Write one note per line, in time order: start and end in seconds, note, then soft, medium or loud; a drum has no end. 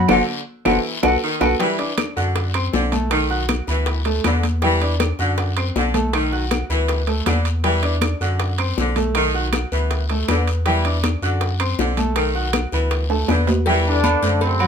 0.08 0.23 F#1 loud
0.08 0.40 D3 medium
0.08 0.21 F#4 medium
0.08 0.21 A4 loud
0.08 0.21 C5 loud
0.08 0.21 F#5 loud
0.08 low bongo medium
0.08 high conga loud
0.08 high timbale loud
0.08 long guiro medium
0.08 claves loud
0.65 0.80 F#1 loud
0.65 0.97 E3 medium
0.65 0.77 F#4 medium
0.65 0.77 A4 loud
0.65 0.77 C5 medium
0.65 0.78 F#5 medium
0.65 low bongo loud
0.65 high conga loud
0.65 high timbale medium
0.65 long guiro loud
0.65 claves loud
1.03 1.17 B1 loud
1.03 1.15 F#4 loud
1.03 1.15 A4 loud
1.03 1.15 B4 medium
1.03 1.16 F#5 loud
1.03 low bongo loud
1.03 high conga medium
1.03 high timbale loud
1.03 claves loud
1.22 1.42 D#3 medium
1.41 1.55 B1 loud
1.41 1.53 F#4 loud
1.41 1.53 A4 loud
1.41 1.53 B4 loud
1.41 1.54 F#5 loud
1.41 low bongo loud
1.41 high conga medium
1.41 high timbale medium
1.41 long guiro loud
1.41 claves medium
1.59 1.92 E3 medium
1.59 1.75 G3 medium
1.59 1.75 G4 medium
1.59 1.76 G5 medium
1.59 high bongo medium
1.59 high conga soft
1.59 high timbale medium
1.59 long guiro medium
1.79 2.10 D4 medium
1.79 2.10 D5 medium
1.79 2.10 D6 medium
1.79 high bongo soft
1.79 high conga soft
1.79 high timbale medium
1.98 high bongo medium
1.98 high conga loud
1.98 high timbale loud
1.98 short guiro medium
1.98 claves medium
2.16 2.69 F#2 loud
2.16 2.48 D3 medium
2.16 2.48 F#4 medium
2.16 2.48 F#5 medium
2.16 2.48 F#6 medium
2.16 high bongo soft
2.16 high conga soft
2.16 short guiro medium
2.36 high bongo medium
2.36 high conga soft
2.36 high timbale medium
2.36 long guiro medium
2.54 2.85 C4 medium
2.54 2.86 C5 medium
2.54 2.86 C6 medium
2.54 high bongo soft
2.54 high conga soft
2.54 high timbale medium
2.54 claves medium
2.73 3.62 B1 medium
2.73 2.93 D3 medium
2.73 high bongo soft
2.73 low bongo medium
2.73 high conga medium
2.73 short guiro medium
2.92 3.23 A3 medium
2.92 3.23 A4 medium
2.92 3.23 A5 medium
2.92 high conga medium
2.92 high timbale medium
2.92 short guiro medium
3.11 3.43 D#3 medium
3.11 high bongo medium
3.11 high conga soft
3.11 high timbale loud
3.11 long guiro medium
3.11 claves medium
3.30 3.61 F#4 medium
3.30 3.61 F#5 medium
3.30 3.61 F#6 medium
3.30 high bongo soft
3.30 high conga soft
3.49 high bongo medium
3.49 high conga medium
3.49 high timbale medium
3.49 short guiro medium
3.49 claves medium
3.67 4.20 D2 loud
3.67 4.00 E3 medium
3.67 3.99 B3 medium
3.67 3.99 B4 medium
3.67 3.99 B5 medium
3.67 high bongo soft
3.67 high conga soft
3.67 short guiro medium
3.86 high bongo medium
3.86 high conga soft
3.86 high timbale medium
3.86 long guiro medium
4.05 4.21 A3 medium
4.05 4.21 A4 medium
4.05 4.21 A5 medium
4.05 high bongo soft
4.05 high conga soft
4.05 high timbale medium
4.24 5.13 E2 loud
4.24 4.45 D3 medium
4.24 4.56 B3 medium
4.24 4.56 B4 medium
4.24 4.56 B5 medium
4.24 high bongo soft
4.24 low bongo medium
4.24 high conga medium
4.24 high timbale medium
4.24 short guiro medium
4.24 claves medium
4.43 high conga medium
4.43 high timbale medium
4.43 short guiro medium
4.62 4.94 E3 medium
4.62 4.78 G3 medium
4.62 4.78 G4 medium
4.62 4.78 G5 medium
4.62 high bongo medium
4.62 high conga soft
4.62 high timbale medium
4.62 long guiro medium
4.81 5.12 D4 medium
4.81 5.13 D5 medium
4.81 5.13 D6 medium
4.81 high bongo soft
4.81 high conga soft
4.81 high timbale medium
5.00 high bongo medium
5.00 high conga loud
5.00 high timbale loud
5.00 short guiro medium
5.00 claves medium
5.19 5.71 F#2 loud
5.19 5.51 D3 medium
5.19 5.50 F#4 medium
5.19 5.50 F#5 medium
5.19 5.50 F#6 medium
5.19 high bongo soft
5.19 high conga soft
5.19 short guiro medium
5.38 high bongo medium
5.38 high conga soft
5.38 high timbale medium
5.38 long guiro medium
5.57 5.88 C4 medium
5.57 5.88 C5 medium
5.57 5.88 C6 medium
5.57 high bongo soft
5.57 high conga soft
5.57 high timbale medium
5.57 claves medium
5.75 6.64 B1 medium
5.75 5.95 D3 medium
5.75 high bongo soft
5.75 low bongo medium
5.75 high conga medium
5.75 short guiro medium
5.94 6.25 A3 medium
5.94 6.26 A4 medium
5.94 6.26 A5 medium
5.94 high conga medium
5.94 high timbale medium
5.94 short guiro medium
6.13 6.45 D#3 medium
6.13 high bongo medium
6.13 high conga soft
6.13 high timbale loud
6.13 long guiro medium
6.13 claves medium
6.32 6.63 F#4 medium
6.32 6.63 F#5 medium
6.32 6.63 F#6 medium
6.32 high bongo soft
6.32 high conga soft
6.51 high bongo medium
6.51 high conga medium
6.51 high timbale medium
6.51 short guiro medium
6.51 claves medium
6.69 7.22 D2 loud
6.69 7.02 E3 medium
6.69 7.01 B3 medium
6.69 7.01 B4 medium
6.69 7.01 B5 medium
6.69 high bongo soft
6.69 high conga soft
6.69 short guiro medium
6.88 high bongo medium
6.88 high conga soft
6.88 high timbale medium
6.88 long guiro medium
7.07 7.23 A3 medium
7.07 7.23 A4 medium
7.07 7.23 A5 medium
7.07 high bongo soft
7.07 high conga soft
7.07 high timbale medium
7.26 8.15 E2 medium
7.26 7.46 D3 medium
7.26 7.57 B3 medium
7.26 7.57 B4 medium
7.26 7.58 B5 medium
7.26 high bongo soft
7.26 low bongo medium
7.26 high conga medium
7.26 high timbale medium
7.26 short guiro medium
7.26 claves medium
7.45 high timbale medium
7.45 short guiro medium
7.64 7.96 E3 medium
7.64 7.79 G3 medium
7.64 7.80 G4 medium
7.64 7.80 G5 medium
7.64 high bongo medium
7.64 high conga soft
7.64 high timbale medium
7.64 long guiro medium
7.83 8.14 D4 medium
7.83 8.14 D5 medium
7.83 8.14 D6 medium
7.83 high bongo soft
7.83 high conga soft
7.83 high timbale medium
8.01 high bongo medium
8.01 high conga medium
8.01 high timbale medium
8.01 short guiro medium
8.01 claves medium
8.20 8.73 F#2 loud
8.20 8.52 D3 medium
8.20 8.52 F#4 medium
8.20 8.52 F#5 medium
8.20 8.52 F#6 medium
8.20 high bongo soft
8.20 high conga soft
8.20 short guiro medium
8.40 high bongo medium
8.40 high conga soft
8.40 high timbale medium
8.40 long guiro medium
8.58 8.90 C4 medium
8.58 8.90 C5 medium
8.58 8.90 C6 medium
8.58 high bongo soft
8.58 high conga soft
8.58 high timbale medium
8.58 claves medium
8.77 9.66 B1 loud
8.77 8.97 D3 medium
8.77 high bongo soft
8.77 low bongo medium
8.77 high conga medium
8.77 short guiro medium
8.96 9.27 A3 medium
8.96 9.27 A4 medium
8.96 9.27 A5 medium
8.96 high conga medium
8.96 high timbale medium
8.96 short guiro medium
9.15 9.47 D#3 medium
9.15 high bongo medium
9.15 high conga soft
9.15 high timbale medium
9.15 long guiro medium
9.15 claves medium
9.34 9.65 F#4 medium
9.34 9.65 F#5 medium
9.34 9.66 F#6 medium
9.34 high bongo soft
9.34 high conga soft
9.53 high bongo medium
9.53 high conga loud
9.53 high timbale loud
9.53 short guiro medium
9.53 claves medium
9.72 10.24 D2 loud
9.72 10.03 E3 medium
9.72 10.03 B3 medium
9.72 10.03 B4 medium
9.72 10.03 B5 medium
9.72 high bongo soft
9.72 high conga soft
9.72 short guiro medium
9.91 high bongo medium
9.91 high conga soft
9.91 high timbale medium
9.91 long guiro medium
10.10 10.25 A3 medium
10.10 10.25 A4 medium
10.10 10.26 A5 medium
10.10 high bongo soft
10.10 high conga soft
10.10 high timbale medium
10.28 11.16 E2 loud
10.28 10.48 D3 medium
10.28 10.59 B3 medium
10.28 10.59 B4 medium
10.28 10.60 B5 medium
10.28 high bongo soft
10.28 low bongo medium
10.28 high conga medium
10.28 high timbale medium
10.28 short guiro medium
10.28 claves medium
10.47 high timbale medium
10.47 short guiro medium
10.66 10.97 E3 loud
10.66 10.81 G3 medium
10.66 10.82 G4 medium
10.66 10.82 G5 medium
10.66 high bongo medium
10.66 high conga soft
10.66 high timbale medium
10.66 long guiro medium
10.85 11.16 D4 medium
10.85 11.16 D5 medium
10.85 11.16 D6 medium
10.85 high bongo soft
10.85 high conga soft
10.85 high timbale medium
11.03 high bongo medium
11.03 high conga loud
11.03 high timbale medium
11.03 short guiro medium
11.03 claves medium
11.22 11.74 F#2 loud
11.22 11.54 D3 medium
11.22 11.53 F#4 medium
11.22 11.53 F#5 medium
11.22 11.54 F#6 medium
11.22 high bongo soft
11.22 high conga soft
11.22 short guiro medium
11.41 high bongo medium
11.41 high conga soft
11.41 high timbale medium
11.41 long guiro medium
11.60 11.91 C4 medium
11.60 11.91 C5 medium
11.60 11.91 C6 medium
11.60 high bongo soft
11.60 high conga soft
11.60 high timbale medium
11.60 claves medium
11.78 12.67 B1 medium
11.78 11.99 D3 medium
11.78 high bongo soft
11.78 low bongo medium
11.78 high conga medium
11.78 short guiro medium
11.97 12.28 A3 medium
11.97 12.28 A4 medium
11.97 12.29 A5 medium
11.97 high conga medium
11.97 high timbale medium
11.97 short guiro medium
12.16 12.47 D#3 medium
12.16 high bongo medium
12.16 high conga soft
12.16 high timbale medium
12.16 long guiro medium
12.16 claves medium
12.35 12.66 F#4 medium
12.35 12.66 F#5 medium
12.35 12.66 F#6 medium
12.35 high bongo soft
12.35 high conga soft
12.53 high bongo medium
12.53 high conga loud
12.53 high timbale loud
12.53 short guiro medium
12.53 claves medium
12.72 13.25 D2 loud
12.72 13.04 E3 medium
12.72 13.04 B3 medium
12.72 13.04 B4 medium
12.72 13.04 B5 medium
12.72 high bongo soft
12.72 high conga soft
12.72 short guiro medium
12.91 high bongo medium
12.91 high conga soft
12.91 high timbale medium
12.91 long guiro medium
13.10 13.25 A3 medium
13.10 13.26 A4 medium
13.10 13.26 A5 medium
13.10 high bongo soft
13.10 high conga soft
13.10 high timbale medium
13.28 14.16 E2 loud
13.28 13.49 D3 medium
13.28 13.60 B3 medium
13.28 13.60 B4 medium
13.28 13.60 B5 medium
13.28 high bongo soft
13.28 low bongo medium
13.28 high conga medium
13.28 high timbale loud
13.28 short guiro medium
13.28 claves medium
13.47 high conga medium
13.47 low timbale loud
13.47 short guiro medium
13.66 13.98 E3 loud
13.66 13.97 G3 medium
13.66 13.97 G4 medium
13.66 13.97 G5 medium
13.66 cowbell loud
13.66 high conga soft
13.66 low agogo medium
13.66 long guiro medium
13.85 14.39 D3 medium
13.85 14.38 D4 loud
13.85 high conga soft
14.03 14.19 B3 medium
14.03 14.19 B4 medium
14.03 14.19 D5 medium
14.03 cowbell medium
14.03 high conga loud
14.03 low agogo loud
14.03 short guiro medium
14.03 claves medium
14.22 14.67 F#2 loud
14.22 14.54 D3 medium
14.22 14.53 A3 medium
14.22 14.54 A4 medium
14.22 14.54 C5 medium
14.22 cowbell medium
14.22 high conga soft
14.22 short guiro medium
14.41 14.67 C3 medium
14.41 14.67 C4 loud
14.41 cowbell loud
14.41 high conga soft
14.41 low agogo medium
14.41 long guiro medium
14.60 14.67 F#3 medium
14.60 14.67 F#4 medium
14.60 14.67 F#5 medium
14.60 high conga soft
14.60 low agogo loud
14.60 claves medium